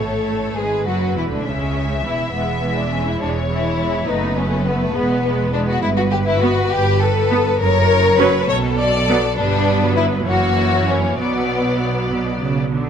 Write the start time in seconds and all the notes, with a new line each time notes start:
Already playing: A1 A3 A4 C#5
0.00 A2
0.56 G#1 G#2 G#3 G#4 B4
0.87 F#1 F#2 F#3 F#4
1.16 E1 E2 E3 E4
1.30 D2 D3 D4
1.45 C#2 C#3 C#4 E5
2.03 E1 E2 E3 E4
2.33 E1 E2 E3 G#3 B3
2.63 E3 G#3
2.77 D4
2.92 E3 G#3 C#4
3.07 E4
3.20 E1 E2 E3 G#3 D4 C#5
3.48 E3 G#3 E4
3.77 E3 G#3
4.06 F#1 F#2 A3 B3 D#4 B4
4.37 A3 B3 C#4
4.66 A3 B3
4.82 A3
4.94 E1 E2 G#3 B3
5.25 G#3 B3
5.53 G#3 B3 D4
5.69 F#4
5.82 G1 G2 E4 B4
5.97 F#4
6.11 G4
6.26 E4
6.40 B3 F#4
6.70 G1 G2 G4
7.01 A4
7.30 B3
7.59 F#1 F#2 A#4 C#5
8.19 F#3 C#4 B4
8.49 B1 B2 A4 C#5
8.78 D5
9.09 F#3 B3
9.37 G1 G2 G3 B3 D4 B4
9.82 F#3
9.96 E4
10.27 F#1 F#2 E3 A#3 F#4 C#5
10.89 C#4
11.19 B1 B2 F#3 B3 D5
12.12 B2
12.43 C#3
12.74 D3